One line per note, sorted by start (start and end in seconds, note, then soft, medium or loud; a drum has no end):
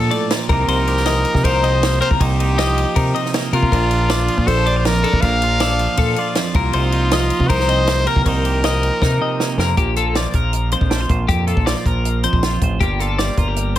0.00 0.29 A#2 medium
0.00 0.50 F3 medium
0.00 0.48 D4 medium
0.00 0.51 F4 medium
0.00 0.12 A4 medium
0.00 0.31 A4 loud
0.11 0.30 A2 medium
0.11 0.49 D5 medium
0.11 ride medium
0.30 0.49 A#2 medium
0.30 snare loud
0.30 ride medium
0.49 0.65 C2 medium
0.49 1.06 C3 medium
0.49 1.06 F3 medium
0.49 1.83 A#3 medium
0.49 0.68 D#4 medium
0.49 0.88 G4 medium
0.49 0.68 A#4 medium
0.49 1.46 A#4 loud
0.49 kick loud
0.49 ride medium
0.68 1.24 C2 medium
0.68 1.45 D#4 medium
0.68 1.06 C5 medium
0.68 ride medium
0.88 1.99 G4 medium
0.88 ride medium
0.97 snare soft
1.06 2.58 F3 medium
1.06 1.44 D#5 medium
1.06 snare loud
1.06 ride medium
1.25 ride medium
1.34 1.43 C3 loud
1.34 kick medium
1.34 snare soft
1.44 2.00 C2 loud
1.44 1.99 D#4 medium
1.44 1.63 A#4 medium
1.44 2.01 C5 loud
1.44 kick medium
1.44 ride medium
1.63 1.99 C3 medium
1.63 2.00 D#5 medium
1.63 ride medium
1.83 2.01 A#3 medium
1.83 snare loud
1.83 ride medium
2.01 2.58 C3 medium
2.01 3.35 A#3 medium
2.01 2.20 A#4 medium
2.01 2.10 C5 medium
2.01 ride medium
2.11 2.19 C2 medium
2.11 kick medium
2.20 2.84 C2 medium
2.20 2.38 D#4 medium
2.20 3.22 G4 loud
2.20 2.58 C5 medium
2.20 kick medium
2.20 ride medium
2.39 2.95 D#4 medium
2.39 ride medium
2.58 4.29 F3 medium
2.58 2.96 D#5 medium
2.58 snare loud
2.58 ride medium
2.78 ride medium
2.96 3.12 C3 medium
2.96 3.51 D#4 medium
2.96 3.15 A#4 medium
2.96 kick medium
2.96 ride medium
3.14 3.50 C3 medium
3.14 3.53 D#5 medium
3.14 ride medium
3.26 snare soft
3.34 3.54 A#3 medium
3.34 snare loud
3.34 ride medium
3.53 3.69 C3 medium
3.53 3.70 C3 medium
3.53 3.73 A#3 medium
3.53 4.49 F4 medium
3.53 3.71 A#4 medium
3.53 ride medium
3.63 kick medium
3.72 4.27 A#1 medium
3.72 4.86 A#2 medium
3.72 3.93 D4 medium
3.72 4.10 A#4 medium
3.72 kick medium
3.72 ride medium
3.91 4.11 D4 medium
3.91 ride medium
4.10 4.66 D4 medium
4.10 4.47 D5 medium
4.10 snare loud
4.10 ride medium
4.28 5.80 F3 medium
4.28 ride medium
4.37 4.46 A#2 loud
4.37 kick medium
4.47 5.03 A#1 medium
4.47 4.66 A4 medium
4.47 4.78 C5 loud
4.47 kick medium
4.47 ride medium
4.66 4.76 D4 medium
4.66 5.04 D5 medium
4.66 ride medium
4.76 5.23 F4 soft
4.76 4.87 C5 medium
4.85 5.23 F2 medium
4.85 5.23 A#4 loud
4.85 snare loud
4.85 ride medium
5.04 5.21 D4 medium
5.04 5.23 A4 medium
5.04 ride medium
5.13 5.21 A#1 medium
5.13 kick medium
5.21 5.86 A#1 medium
5.21 6.37 A#2 medium
5.21 6.54 D4 medium
5.21 5.61 A#4 medium
5.21 6.36 F5 loud
5.21 kick medium
5.21 ride medium
5.42 6.19 F4 medium
5.42 ride medium
5.60 6.54 A4 medium
5.60 5.99 D5 medium
5.60 snare loud
5.60 ride medium
5.79 7.11 F3 medium
5.79 ride medium
5.97 6.14 A#2 medium
5.97 6.17 A4 medium
5.97 kick medium
5.97 ride medium
6.16 6.74 F4 medium
6.16 6.56 D5 medium
6.16 ride medium
6.35 6.56 F2 medium
6.35 snare medium
6.35 ride medium
6.54 6.71 C2 medium
6.54 7.12 C3 medium
6.54 7.88 A#3 medium
6.54 7.50 F4 medium
6.54 6.74 A#4 medium
6.54 kick loud
6.54 ride medium
6.73 7.30 C2 medium
6.73 6.93 D#4 medium
6.73 7.12 C5 medium
6.73 ride medium
6.92 7.50 D#4 medium
6.92 ride medium
7.11 8.63 F3 medium
7.11 7.50 D#5 medium
7.11 snare loud
7.11 ride medium
7.30 ride medium
7.40 7.48 C3 loud
7.40 kick medium
7.48 8.05 C2 medium
7.48 8.04 D#4 medium
7.48 7.69 A#4 medium
7.48 8.09 C5 loud
7.48 kick medium
7.48 ride medium
7.60 snare soft
7.68 8.04 C3 medium
7.68 8.07 D#5 medium
7.68 ride medium
7.87 8.06 A#3 medium
7.87 snare loud
7.87 ride medium
8.06 8.63 C3 medium
8.06 9.39 A#3 medium
8.06 8.26 A#4 medium
8.06 8.24 A#4 medium
8.06 ride medium
8.16 8.24 C2 medium
8.16 kick medium
8.25 8.89 C2 medium
8.25 9.00 D#4 medium
8.25 9.54 A#4 medium
8.25 8.64 C5 medium
8.25 kick medium
8.25 ride medium
8.45 9.56 G4 medium
8.45 ride medium
8.64 10.14 F3 medium
8.64 9.02 D#5 medium
8.64 snare loud
8.64 ride medium
8.83 ride medium
9.01 9.17 C3 medium
9.01 9.56 D#4 medium
9.01 9.21 A#4 medium
9.01 kick medium
9.01 snare medium
9.21 9.56 C3 medium
9.21 9.59 D#5 medium
9.40 9.59 A#3 medium
9.40 snare medium
9.58 9.74 F2 loud
9.58 9.75 C3 medium
9.58 11.30 A#3 medium
9.58 9.77 A#4 medium
9.58 snare medium
9.77 10.25 A#1 medium
9.77 10.72 A#2 medium
9.77 9.96 G4 medium
9.77 kick medium
9.77 closed hi-hat medium
9.96 10.90 F4 medium
9.96 10.15 A4 medium
9.96 closed hi-hat medium
10.15 11.66 F3 medium
10.15 10.35 D5 medium
10.15 snare loud
10.15 closed hi-hat medium
10.33 10.74 A#1 medium
10.33 11.10 A#4 medium
10.33 10.72 A#4 medium
10.33 kick medium
10.33 closed hi-hat medium
10.53 closed hi-hat medium
10.72 11.29 F2 medium
10.72 11.10 C5 medium
10.72 closed hi-hat medium
10.81 11.05 A#1 medium
10.81 kick medium
10.90 11.01 D4 medium
10.90 snare loud
10.90 closed hi-hat medium
11.01 11.29 F4 soft
11.09 11.25 A#1 medium
11.09 11.27 C5 medium
11.09 kick medium
11.09 closed hi-hat medium
11.28 11.52 F2 medium
11.28 12.24 A#2 medium
11.28 11.47 G4 medium
11.28 kick loud
11.28 closed hi-hat medium
11.47 12.43 F4 medium
11.47 11.66 A4 medium
11.47 closed hi-hat medium
11.57 11.73 A#1 medium
11.57 kick medium
11.66 12.81 F3 medium
11.66 11.86 D5 medium
11.66 snare loud
11.66 closed hi-hat medium
11.76 snare soft
11.86 12.26 A#1 medium
11.86 12.23 A#4 medium
11.86 12.63 A#4 medium
11.86 kick medium
11.86 closed hi-hat medium
12.05 closed hi-hat medium
12.23 12.80 F2 medium
12.23 12.62 C5 medium
12.23 closed hi-hat medium
12.33 12.57 A#1 medium
12.33 kick medium
12.43 12.82 F4 medium
12.43 snare medium
12.43 closed hi-hat medium
12.61 12.77 A1 medium
12.61 12.79 C5 medium
12.61 kick medium
12.61 closed hi-hat medium
12.80 13.28 G1 medium
12.80 13.79 G2 medium
12.80 13.19 G3 medium
12.80 13.79 A#3 medium
12.80 13.01 F4 medium
12.80 13.00 G4 medium
12.80 13.38 G4 medium
12.80 kick medium
12.80 closed hi-hat medium
13.00 13.38 F4 medium
13.00 13.19 A4 medium
13.00 closed hi-hat medium
13.19 13.79 G3 medium
13.19 13.38 D5 medium
13.19 snare loud
13.19 closed hi-hat medium
13.37 13.77 G1 medium
13.37 13.48 F4 medium
13.37 13.75 A#4 medium
13.37 kick medium
13.37 closed hi-hat medium
13.48 13.79 G4 medium
13.56 closed hi-hat medium
13.76 closed hi-hat medium